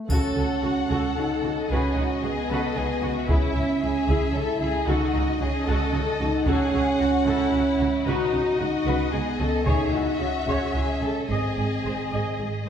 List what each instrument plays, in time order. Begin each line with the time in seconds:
0.08 double bass section C#2, cello section C#3, french horn section C#4, viola section F#4 A4, violin section A4 F#5, taiko, triangle
0.36 double bass section C#2, cello section C#3, viola section C#4 F#4
0.63 double bass section C#2, cello section C#3, viola section F#4, violin section F#4
0.89 double bass section C#2, cello section C#3, viola section F#4 A4, violin section A4, taiko
1.16 double bass section C#2, cello section C#3, viola section C#4 F#4, french horn section D#4
1.44 double bass section C#2, cello section C#3, viola section F#4
1.70 double bass section C#2, cello section C#3, french horn section C#4, viola section F#4 B4, violin section G#4 D#5
1.96 double bass section C#2, cello section C#3, viola section D#4 F#4, violin section F#4
2.22 double bass section C#2, cello section C#3, french horn section B3, viola section F#4, violin section G#4
2.50 double bass section C#2, cello section C#3, viola section F#4 B4, violin section A4
2.76 double bass section C#2, cello section C#3, french horn section B3, viola section D#4 F#4, violin section G#4
3.02 double bass section C#2, cello section C#3, viola section F#4, violin section F#4
3.28 double bass section C#2, cello section C#3, french horn section C#4, viola section E4 G#4, violin section E4 E5, taiko
3.55 double bass section C#2, cello section C#3, viola section C#4 E4
3.81 double bass section C#2, cello section C#3, viola section E4, violin section G#4
4.08 double bass section C#2, cello section C#3, viola section E4 G#4, taiko
4.33 double bass section C#2, cello section C#3, viola section C#4 E4, french horn section E4, violin section A4
4.60 double bass section C#2, cello section C#3, viola section E4, violin section G#4
4.86 double bass section C#2, cello section C#3, french horn section D#4, viola section F#4 A4, violin section F#4 D#5
5.13 double bass section C#2, cello section C#3, viola section D#4 F#4
5.40 double bass section C#2, cello section C#3, french horn section C#4, viola section F#4, violin section G#4
5.66 double bass section C#2, cello section C#3, viola section F#4 A4, violin section A4
5.93 double bass section C#2, cello section C#3, viola section D#4 F#4
6.20 double bass section C#2, cello section C#3, french horn section D#4, viola section F#4
6.45 double bass section C#2, cello section C#3, french horn section C#4, viola section F#4 A4, violin section G#4 F#5, taiko
6.73 double bass section C#2, cello section C#3, viola section C#4 F#4
6.99 double bass section C#2, cello section C#3, viola section F#4, violin section F#4
7.25 double bass section C#2, cello section C#3, violin section E4, viola section F#4 A4
7.52 double bass section C#2, cello section C#3, viola section C#4 F#4
7.79 double bass section C#2, cello section C#3, viola section F#4
8.06 double bass section C#2, cello section C#3, violin section D#4 D#5, french horn section F#4, viola section F#4 B4
8.33 double bass section C#2, cello section C#3, viola section D#4 F#4
8.59 double bass section C#2, cello section C#3, french horn section D#4, violin section F#4, viola section F#4
8.86 double bass section C#2, cello section C#3, viola section F#4 B4
9.11 double bass section C#2, cello section C#3, french horn section B3, viola section D#4 F#4, violin section G#4
9.39 double bass section C#2, cello section C#3, viola section F#4, violin section A4
9.65 double bass section C#2, cello section C#3, french horn section D#4, viola section G#4 C#5, violin section G#4 E5, taiko
9.93 double bass section C#2, cello section C#3, viola section E4 G#4, violin section F#4
10.20 double bass section C#2, cello section C#3, french horn section C#4, viola section G#4
10.47 double bass section C#2, cello section C#3, viola section G#4 C#5, taiko
10.74 double bass section C#2, cello section C#3, viola section E4 G#4, violin section G#4
11.02 double bass section C#2, cello section C#3, viola section G#4, violin section A4
11.29 double bass section G#1, cello section G#2, french horn section C4, violin section G#4 D#5, viola section G#4 D#5
11.57 double bass section G#1, cello section G#2, viola section G#4
11.84 double bass section G#1, cello section G#2, viola section G#4 C5
12.12 double bass section G#1, cello section G#2, viola section G#4 D#5
12.39 double bass section G#1, cello section G#2, viola section G#4